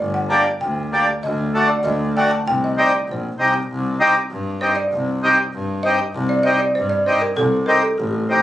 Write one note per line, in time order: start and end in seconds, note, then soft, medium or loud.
0.00 0.36 G1 loud
0.00 0.15 D5 medium
0.14 0.30 F#5 medium
0.29 0.45 A#3 medium
0.29 0.45 D4 medium
0.29 0.46 G4 medium
0.29 0.62 A5 medium
0.61 0.98 D2 loud
0.61 1.04 G5 medium
0.92 1.07 A#3 medium
0.92 1.08 D4 medium
0.92 1.08 G4 medium
1.23 1.60 D2 loud
1.23 1.71 D#5 medium
1.54 1.69 A3 medium
1.54 1.69 D4 medium
1.54 1.70 F#4 medium
1.68 1.84 D5 medium
1.84 2.21 D2 loud
1.84 2.16 D#5 medium
2.16 2.31 A3 medium
2.16 2.31 D4 medium
2.16 2.32 F#4 medium
2.16 2.32 G5 medium
2.31 2.47 A5 medium
2.46 2.83 C2 loud
2.46 2.62 G5 loud
2.64 2.78 D#5 medium
2.77 2.92 C4 medium
2.77 2.93 D#4 medium
2.77 2.93 G4 medium
2.77 3.09 D5 medium
3.08 3.35 A#1 medium
3.08 3.52 C5 medium
3.38 3.66 C2 medium
3.38 3.54 C4 medium
3.38 3.54 D#4 medium
3.38 3.55 G4 medium
3.69 4.06 C2 loud
4.00 4.15 C4 medium
4.00 4.15 D#4 medium
4.00 4.16 G4 loud
4.31 4.67 G2 loud
4.61 4.76 C4 medium
4.61 4.77 D#4 medium
4.61 4.77 G4 medium
4.61 4.68 C5 loud
4.75 5.86 D5 medium
4.92 5.29 C2 loud
5.23 5.38 C4 medium
5.23 5.38 D#4 medium
5.23 5.39 G4 medium
5.54 5.90 G2 loud
5.83 5.99 C4 medium
5.83 6.00 D#4 medium
5.83 6.00 G4 medium
5.83 6.26 D#5 loud
6.14 6.51 C2 loud
6.29 6.45 D5 medium
6.43 6.60 C4 medium
6.43 6.60 D#4 medium
6.43 6.61 G4 medium
6.43 6.60 D#5 loud
6.59 6.74 D5 loud
6.75 7.13 G2 medium
6.75 6.91 C5 medium
6.89 7.06 D5 loud
7.06 7.21 C4 medium
7.06 7.22 D#4 medium
7.06 7.23 G4 medium
7.06 7.22 C5 medium
7.21 7.28 A#4 medium
7.37 7.73 C2 loud
7.37 7.65 A4 loud
7.66 7.82 C4 medium
7.66 7.83 D#4 medium
7.66 7.83 G4 medium
7.66 7.83 A#4 medium
7.82 7.89 A4 medium
7.98 8.35 A1 loud
7.98 8.42 G4 medium
8.29 8.42 C4 medium
8.29 8.42 D#4 medium
8.29 8.42 G4 medium